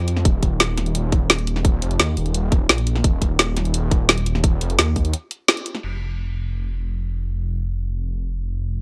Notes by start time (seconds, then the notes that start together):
Already playing: F2
0.08 closed hi-hat
0.17 snare
0.25 D#1, kick, closed hi-hat
0.43 kick, closed hi-hat
0.60 snare, closed hi-hat
0.78 snare, closed hi-hat
0.86 closed hi-hat
0.95 closed hi-hat
1.12 kick, closed hi-hat
1.30 snare, closed hi-hat
1.39 closed hi-hat
1.47 closed hi-hat
1.56 snare
1.65 D#1, kick, closed hi-hat
1.82 F1, closed hi-hat
1.91 closed hi-hat
2.00 D#2, snare, closed hi-hat
2.17 D#1, open hi-hat
2.26 closed hi-hat
2.34 closed hi-hat
2.52 kick, closed hi-hat
2.69 A#1, snare, closed hi-hat
2.78 closed hi-hat
2.87 closed hi-hat
2.96 snare
3.04 D#1, kick, closed hi-hat
3.22 kick, closed hi-hat
3.39 snare, closed hi-hat
3.57 snare, closed hi-hat
3.65 closed hi-hat
3.74 closed hi-hat
3.91 kick, closed hi-hat
4.09 snare, closed hi-hat
4.18 closed hi-hat
4.26 closed hi-hat
4.35 snare
4.44 D#1, kick, closed hi-hat
4.61 F1, closed hi-hat
4.70 closed hi-hat
4.79 D#2, snare, closed hi-hat
4.96 D#2, kick, open hi-hat
5.05 closed hi-hat
5.13 closed hi-hat
5.31 closed hi-hat
5.48 snare, closed hi-hat
5.57 closed hi-hat
5.66 closed hi-hat
5.75 snare
5.83 F1, crash